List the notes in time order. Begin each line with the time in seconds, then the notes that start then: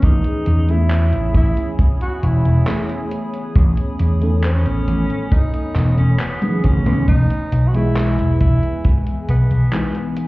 Already playing: D#3 A3 B3 C#4 G#4
0.02 A1 D#4 C#5 G#5 B5 D#6, kick, closed hi-hat
0.24 closed hi-hat
0.46 E2, closed hi-hat
0.67 E3 A3 B3 C#4 E4 G#4, closed hi-hat
0.91 clap, closed hi-hat
1.13 A1, closed hi-hat
1.34 A1 E4, kick, closed hi-hat
1.57 closed hi-hat
1.79 kick, closed hi-hat
2.01 F#4, closed hi-hat
2.23 E1 E4, closed hi-hat
2.45 E1, closed hi-hat
2.65 E3 A3 B3 C#4 G#4, clap, closed hi-hat
2.89 closed hi-hat
3.11 closed hi-hat
3.34 closed hi-hat
3.55 A1, kick, closed hi-hat
3.77 closed hi-hat
3.99 E2, closed hi-hat
4.20 D#3 A3 B3 C#4 A4, closed hi-hat
4.44 C#4, clap, closed hi-hat
4.66 A1, closed hi-hat
4.87 A1, closed hi-hat
5.10 closed hi-hat
5.32 D#4, kick, closed hi-hat
5.54 closed hi-hat
5.75 E1, clap, closed hi-hat
5.98 E1 C#4, closed hi-hat
6.20 B3, clap, closed hi-hat
6.41 D#3 A3 B3 C#4 G#4, closed hi-hat, high tom
6.64 A1 C#4, kick, closed hi-hat, mid tom
6.85 C#2 D#3 A3 B3 C#4 B4, closed hi-hat, mid tom
7.08 E1 D#4 B4 G#5, kick, closed hi-hat
7.30 closed hi-hat
7.52 B1, closed hi-hat
7.67 F#4
7.73 E3 G#3 B3 E4 G#4 D#5, closed hi-hat
7.97 clap, closed hi-hat
8.18 E1, closed hi-hat
8.41 E1 E4, kick, closed hi-hat
8.63 closed hi-hat
8.85 kick, closed hi-hat
9.07 closed hi-hat
9.29 B1 B3, closed hi-hat
9.51 B1, closed hi-hat
9.71 E3 G#3 B3 D#4 G#4, clap, closed hi-hat
9.95 closed hi-hat
10.17 closed hi-hat